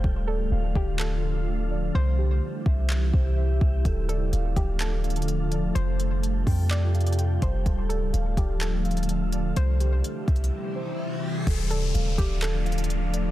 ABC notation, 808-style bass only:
X:1
M:4/4
L:1/16
Q:1/4=126
K:Dm
V:1 name="808-style bass" clef=bass
D,,,3 C,,, D,,,2 D,,,8- D,,,2 | C,,4 z2 C,,4 C,,4 C,,2 | D,,,4 D,,,2 D,,,8- D,,,2 | F,,,6 F,,8 F,,,2 |
D,,,3 C,,, D,,,2 D,,,8- D,,,2 | C,,4 z2 C,,2 z8 | D,,,4 D,,,2 D,,,8- D,,,2 |]